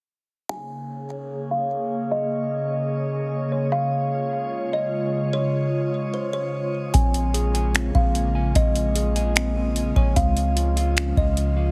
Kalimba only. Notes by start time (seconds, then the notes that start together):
0.49 G#5
1.51 F5
2.11 D#5
3.52 C#5
3.72 F5
4.73 D#5
5.33 C#5
6.14 C5
6.33 C#5
6.94 G#5
7.95 F5
8.56 D#5
9.96 C#5
10.16 F5
11.17 D#5